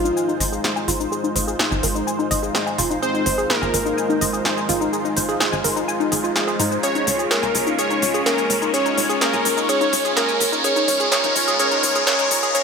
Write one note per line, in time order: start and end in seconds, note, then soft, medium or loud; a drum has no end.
0.00 0.12 G#1 medium
0.00 10.60 G#3 medium
0.00 6.79 D#4 medium
0.00 0.31 F4 medium
0.00 10.60 F4 medium
0.00 6.79 C5 medium
0.00 riser medium
0.05 0.08 D#4 medium
0.05 cabasa soft
0.17 0.25 G#5 medium
0.17 cabasa soft
0.29 0.34 D#4 medium
0.29 cabasa soft
0.40 0.59 G#1 medium
0.40 0.46 D#5 loud
0.40 open hi-hat loud
0.40 cabasa medium
0.52 0.58 G#4 medium
0.52 cabasa soft
0.64 0.70 G#4 medium
0.64 snare loud
0.64 cabasa soft
0.76 0.80 G#5 medium
0.76 cabasa soft
0.88 1.07 G#1 medium
0.88 0.97 F4 loud
0.88 open hi-hat loud
0.88 cabasa medium
1.00 1.04 D#4 medium
1.00 cabasa soft
1.12 1.21 G#4 medium
1.12 cabasa soft
1.24 1.33 D#4 medium
1.24 cabasa soft
1.36 1.55 G#1 medium
1.36 1.42 C5 medium
1.36 open hi-hat loud
1.36 cabasa medium
1.48 1.53 G#4 loud
1.48 cabasa soft
1.59 1.65 G#4 loud
1.59 snare loud
1.59 cabasa soft
1.71 1.81 G#1 loud
1.71 1.75 G#5 medium
1.71 cabasa soft
1.83 2.02 G#1 medium
1.83 1.87 A#4 medium
1.83 open hi-hat loud
1.83 cabasa medium
1.95 1.99 D#4 medium
1.95 cabasa soft
2.07 2.16 G#5 medium
2.07 cabasa soft
2.19 2.25 D#4 medium
2.19 cabasa soft
2.31 2.50 G#1 medium
2.31 2.37 D#5 loud
2.31 open hi-hat loud
2.31 cabasa medium
2.43 2.49 G#4 medium
2.43 cabasa soft
2.55 2.61 G#4 medium
2.55 snare loud
2.55 cabasa soft
2.67 2.70 G#5 medium
2.67 cabasa soft
2.78 2.98 F1 medium
2.78 2.87 F4 loud
2.78 open hi-hat loud
2.78 cabasa medium
2.90 2.94 D#4 medium
2.90 cabasa soft
3.02 3.11 G#4 medium
3.02 3.52 C5 loud
3.02 cabasa soft
3.14 3.23 D#4 medium
3.14 cabasa soft
3.26 3.45 G#1 loud
3.26 3.32 C5 medium
3.26 open hi-hat loud
3.26 cabasa medium
3.38 3.44 G#4 loud
3.38 cabasa soft
3.50 3.56 G#4 loud
3.50 4.12 A#4 loud
3.50 snare loud
3.50 cabasa soft
3.62 3.71 G#1 medium
3.62 3.65 G#5 medium
3.62 cabasa soft
3.74 3.93 G#1 medium
3.74 3.77 A#4 medium
3.74 open hi-hat loud
3.74 cabasa medium
3.86 3.89 D#4 medium
3.86 cabasa soft
3.98 4.06 G#5 medium
3.98 cabasa soft
4.09 4.15 D#4 medium
4.09 cabasa soft
4.21 4.40 G#1 medium
4.21 4.27 D#5 loud
4.21 open hi-hat loud
4.21 cabasa medium
4.33 4.39 G#4 medium
4.33 cabasa soft
4.45 4.51 G#4 medium
4.45 snare loud
4.45 cabasa soft
4.57 4.61 G#5 medium
4.57 cabasa soft
4.69 4.88 G#1 medium
4.69 4.78 F4 loud
4.69 open hi-hat loud
4.69 cabasa medium
4.81 4.84 D#4 medium
4.81 cabasa soft
4.93 5.02 G#4 medium
4.93 cabasa soft
5.05 5.13 D#4 medium
5.05 cabasa soft
5.17 5.36 G#1 medium
5.17 5.23 C5 medium
5.17 open hi-hat loud
5.17 cabasa medium
5.29 5.34 G#4 loud
5.29 cabasa soft
5.40 5.46 G#4 loud
5.40 snare loud
5.40 cabasa soft
5.53 5.62 G#1 loud
5.53 5.56 G#5 medium
5.53 cabasa soft
5.64 5.83 G#1 medium
5.64 5.68 A#4 medium
5.64 open hi-hat loud
5.64 cabasa medium
5.76 5.80 D#4 medium
5.76 cabasa soft
5.88 5.97 G#5 medium
5.88 cabasa soft
6.00 6.06 D#4 medium
6.00 cabasa soft
6.12 6.31 G#1 medium
6.12 6.21 G#4 medium
6.12 open hi-hat loud
6.12 cabasa medium
6.24 6.33 F4 medium
6.24 cabasa soft
6.36 6.39 G#4 medium
6.36 snare loud
6.36 cabasa soft
6.48 6.56 G#4 medium
6.48 cabasa soft
6.59 6.79 G#2 medium
6.59 6.68 D#4 loud
6.59 open hi-hat loud
6.59 cabasa medium
6.71 6.77 C5 medium
6.71 cabasa soft
6.83 12.63 C#4 medium
6.83 6.92 G#4 medium
6.83 10.61 C#5 medium
6.83 7.26 C#5 medium
6.83 closed hi-hat medium
6.83 cabasa soft
6.95 7.04 D#4 medium
6.95 closed hi-hat soft
6.95 cabasa soft
7.07 7.26 C#2 loud
7.07 7.13 C#5 medium
7.07 open hi-hat loud
7.07 cabasa medium
7.19 7.25 G#4 medium
7.19 closed hi-hat soft
7.19 cabasa soft
7.31 7.37 G#4 medium
7.31 7.77 A#4 medium
7.31 snare loud
7.31 closed hi-hat medium
7.31 cabasa soft
7.43 7.52 C#2 medium
7.43 7.46 G#5 medium
7.43 closed hi-hat soft
7.43 cabasa soft
7.55 7.74 C#2 medium
7.55 7.58 A#4 medium
7.55 open hi-hat loud
7.55 cabasa medium
7.67 7.70 D#4 medium
7.67 closed hi-hat soft
7.67 cabasa soft
7.79 7.87 G#4 medium
7.79 8.22 C#5 medium
7.79 closed hi-hat medium
7.79 cabasa soft
7.90 7.99 D#4 medium
7.90 closed hi-hat soft
7.90 cabasa soft
8.02 8.21 C#2 medium
8.02 8.08 C#5 medium
8.02 open hi-hat loud
8.02 cabasa medium
8.14 8.20 G#4 medium
8.14 closed hi-hat soft
8.14 cabasa soft
8.26 8.32 G#4 loud
8.26 8.72 A#4 medium
8.26 snare loud
8.26 closed hi-hat medium
8.26 cabasa soft
8.38 8.42 G#5 medium
8.38 closed hi-hat soft
8.38 cabasa soft
8.50 8.69 C#2 loud
8.50 8.53 A#4 medium
8.50 open hi-hat loud
8.50 cabasa medium
8.62 8.65 D#4 medium
8.62 closed hi-hat soft
8.62 cabasa soft
8.74 8.83 G#4 medium
8.74 9.17 C#5 loud
8.74 closed hi-hat medium
8.74 cabasa soft
8.86 8.94 D#4 medium
8.86 closed hi-hat soft
8.86 cabasa soft
8.98 9.17 C#2 medium
8.98 9.03 C#5 medium
8.98 open hi-hat loud
8.98 cabasa medium
9.10 9.15 G#4 medium
9.10 closed hi-hat soft
9.10 cabasa soft
9.21 9.27 G#4 medium
9.21 9.67 A#4 medium
9.21 snare loud
9.21 closed hi-hat medium
9.21 cabasa soft
9.33 9.43 C#2 loud
9.33 9.37 G#5 medium
9.33 closed hi-hat soft
9.33 cabasa soft
9.45 9.64 C#2 medium
9.45 9.49 A#4 medium
9.45 open hi-hat loud
9.45 cabasa medium
9.57 9.61 D#4 medium
9.57 closed hi-hat soft
9.57 cabasa soft
9.69 9.78 G#4 medium
9.69 10.12 C#5 loud
9.69 closed hi-hat medium
9.69 cabasa soft
9.81 9.90 D#4 medium
9.81 closed hi-hat soft
9.81 cabasa soft
9.93 10.12 C#2 medium
9.93 9.99 C#5 medium
9.93 open hi-hat loud
9.93 cabasa medium
10.05 10.11 G#4 loud
10.05 closed hi-hat soft
10.05 cabasa soft
10.17 10.22 G#4 loud
10.17 10.62 A#4 loud
10.17 snare loud
10.17 closed hi-hat medium
10.17 cabasa soft
10.29 10.32 G#5 medium
10.29 closed hi-hat soft
10.29 cabasa soft
10.40 10.59 G#1 medium
10.40 10.44 A#4 medium
10.40 open hi-hat loud
10.40 cabasa medium
10.52 10.56 D#4 medium
10.52 closed hi-hat soft
10.52 cabasa soft
10.64 12.63 G#3 medium
10.64 12.53 F4 medium
10.64 10.73 G#4 medium
10.64 12.63 A#4 medium
10.64 11.07 C#5 loud
10.64 closed hi-hat medium
10.64 cabasa soft
10.76 10.85 D#4 medium
10.76 closed hi-hat soft
10.76 cabasa soft
10.88 11.07 A#1 loud
10.88 10.94 C#5 medium
10.88 open hi-hat loud
10.88 cabasa medium
11.00 11.06 G#4 loud
11.00 closed hi-hat soft
11.00 cabasa soft
11.12 11.21 G#4 medium
11.12 11.55 C#5 loud
11.12 snare loud
11.12 closed hi-hat loud
11.12 cabasa soft
11.24 11.33 A#1 medium
11.24 11.33 D#4 medium
11.24 closed hi-hat soft
11.24 cabasa soft
11.36 11.55 A#1 medium
11.36 11.42 C#5 medium
11.36 open hi-hat loud
11.36 cabasa medium
11.48 11.53 G#4 loud
11.48 closed hi-hat soft
11.48 cabasa soft
11.59 11.68 G#4 medium
11.59 12.03 C#5 loud
11.59 closed hi-hat medium
11.59 cabasa soft
11.71 11.80 D#4 medium
11.71 closed hi-hat soft
11.71 cabasa soft
11.83 12.02 A#1 medium
11.83 11.89 C#5 medium
11.83 open hi-hat loud
11.83 cabasa medium
11.95 12.01 G#4 loud
11.95 closed hi-hat soft
11.95 cabasa soft
12.07 12.16 G#4 medium
12.07 12.50 C#5 loud
12.07 snare loud
12.07 closed hi-hat loud
12.07 cabasa soft
12.19 12.28 D#4 medium
12.19 closed hi-hat soft
12.19 cabasa soft
12.31 12.50 A#1 medium
12.31 12.37 C#5 medium
12.31 open hi-hat loud
12.31 cabasa medium
12.43 12.49 G#4 loud
12.43 closed hi-hat soft
12.43 cabasa soft
12.55 12.63 D#4 medium
12.55 12.63 G#4 medium
12.55 12.63 C#5 loud
12.55 closed hi-hat medium
12.55 cabasa soft